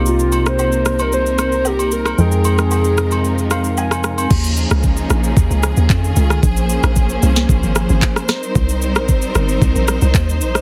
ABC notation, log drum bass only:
X:1
M:4/4
L:1/16
Q:1/4=113
K:Cphr
V:1 name="Log drum bass" clef=bass
z16 | z16 | E,,3 D,,3 B,,,2 E,, D,,2 E,, F,,2 ^C,,2 | B,,,3 B,,,3 C,,2 B,,, A,,,2 A,,, z4 |
C,,3 B,,,3 G,,,2 C,, B,,,2 C,, E,,2 B,,,2 |]